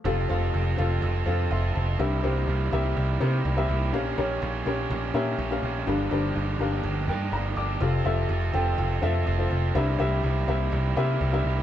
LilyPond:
<<
  \new Staff \with { instrumentName = "Felt piano" } { \time 4/4 \key f \major \tempo 4 = 124 << { r2. <e'' c'''>8 <c'' a''>8~ | <c'' a''>8 r2. r8 | r1 | r2 r8 <bes' g''>8 <d'' bes''>8 <f'' d'''>8~ |
<f'' d'''>8 r2. r8 | r1 | } \\ { <c' f' a' f''>8 <c' f' a' f''>8. r16 <c' f' a' f''>8. r16 <c' f' a' f''>8. r8. | <c' g' bes' e''>8 <c' g' bes' c''>8. r16 <c' g' bes' e''>8. r16 <c' g' bes' c''>8. <c' g' bes' e''>8. | <des' g' bes' f''>8 <des' g' bes' des''>8. r16 <des' g' bes' des''>8. r16 <des' g' bes' e''>8. <des' g' bes' f''>8. | <d' g' bes' f''>8 <d' g' bes' c''>8. r16 <d' g' bes' f''>8. r4. r16 |
<c' f' a' f''>8 <c' f' a' e''>8. r16 <c' f' a' g''>8. r16 <c' f' a' e''>8. <c' f' a' c''>8. | <c' g' bes' e''>8 <c' g' bes' e''>8. r16 <c' g' bes' e''>8. r16 <c' g' bes' e''>8. <c' g' bes' e''>8. | } >> }
  \new Staff \with { instrumentName = "Felt piano" } { \clef bass \time 4/4 \key f \major c4. r2 r8 | g,4. r2 r8 | r1 | <g, d>4. r2 r8 |
c4. r2 r8 | g,4. r2 r8 | }
  \new Staff \with { instrumentName = "Overdriven electric guitar" } { \time 4/4 \key f \major <f c' f' a'>8 <c' f' a'>8 <f c' f' a'>8 <c' f' a'>8 <f c' f' a'>8 <c' f' a'>8 <f c' f' a'>8 <c' f' a'>8 | <c g bes e' g'>8 <bes e' g'>8 <c g bes e' g'>8 <bes e' g'>8 <g bes e' g'>8 <bes e' g'>8 <c g bes e' g'>8 <bes e' g'>8 | <bes des' f' g'>8 <des' f' g'>8 <bes des' f' g'>8 <des' f' g'>8 <bes des' f' g'>8 <des' f' g'>8 <bes des' f' g'>8 <des' f' g'>8 | <g, d f bes d' g'>8 <f bes d' g'>8 <g, d f bes d' g'>8 <f bes d' g'>8 <f bes d' g'>8 <f bes d' g'>8 <g, d f bes d' g'>8 <f bes d' g'>8 |
<f c' f' a'>8 <c' f' a'>8 <f c' f' a'>8 <c' f' a'>8 <f c' f' a'>8 <c' f' a'>8 <f c' f' a'>8 <c' f' a'>8 | <c g bes e' g'>8 <bes e' g'>8 <c g bes e' g'>8 <bes e' g'>8 <g bes e' g'>8 <bes e' g'>8 <c g bes e' g'>8 <bes e' g'>8 | }
  \new Staff \with { instrumentName = "Picked electric bass" } { \clef bass \time 4/4 \key f \major f,,8 f,,8 f,,8 f,,8 f,,8 f,8 f,,8 f,,8 | c,8 c,8 c,8 c,8 c,8 c8 c,8 c,8 | bes,,8 bes,,8 bes,,8 bes,,8 bes,,8 bes,8 bes,,8 bes,,8 | g,,8 g,,8 g,,8 g,,8 g,,8 g,8 g,,8 g,,8 |
f,,8 f,,8 f,,8 f,,8 f,,8 f,8 f,,8 f,,8 | c,8 c,8 c,8 c,8 c,8 c8 c,8 c,8 | }
>>